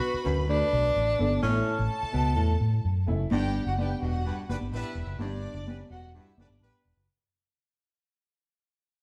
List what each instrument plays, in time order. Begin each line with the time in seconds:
Already playing: upright piano B3 D4 F#4, tenor saxophone F#4, violin section B4 B5
0.14 muted fingered electric bass stroke
0.24 fingered electric bass D2, baritone saxophone F#2
0.48 baritone saxophone D2, tenor saxophone D4
0.73 fingered electric bass B1
0.96 fingered electric bass A1
1.18 fingered electric bass G1, upright piano B3 D4 A4
1.42 fingered electric bass A1, baritone saxophone A2, upright piano A3 B3 E4, tenor saxophone C#4, violin section A4 A5
1.50 upright piano C#4
1.79 fingered electric bass A1
2.03 muted fingered electric bass stroke
2.13 fingered electric bass C#2, baritone saxophone B2
2.35 fingered electric bass E2, baritone saxophone A2
2.61 fingered electric bass A2
2.85 fingered electric bass F#2
3.06 fingered electric bass F#1, upright piano A3 C#4 E4
3.31 fingered electric bass G1, baritone saxophone G2, upright piano G3 B3 D4, violin section G4 G5
3.66 fingered electric bass F#1, violin section F#4 F#5
3.78 upright piano G3 B3 D4, horn section G3 B3 D4 B4, violin section G4 G5
4.01 fingered electric bass E1, baritone saxophone B2, violin section F#4 F#5
4.25 baritone saxophone G2, horn section G3 B3 D4 B4
4.49 fingered electric bass F#1, horn section G3 B3 D4 B4, upright piano G3 A#3 D4
4.56 upright piano B3
4.61 fingered electric bass G1
4.72 fingered electric bass A1, horn section G3 B3 D4 B4, violin section E4 E5
4.95 fingered electric bass E1
5.07 fingered electric bass F#1
5.19 fingered electric bass G1, baritone saxophone G2, upright piano G3 B3 D4, violin section D4 D5
5.54 fingered electric bass F#1
5.67 upright piano G3 B3 C#4, horn section G3 B3 D4 B4
5.90 fingered electric bass E1, baritone saxophone B2, violin section F#4 F#5
6.14 baritone saxophone G2, horn section G3 B3 D4 B4, violin section E4 E5
6.37 fingered electric bass F#1, upright piano G3 A3 D4, horn section G3 B3 D4 B4, violin section D4 D5
6.44 upright piano B3
6.50 fingered electric bass G1
6.61 fingered electric bass A1, horn section G3 B3 D4 B4
6.85 fingered electric bass E1
6.97 fingered electric bass F#1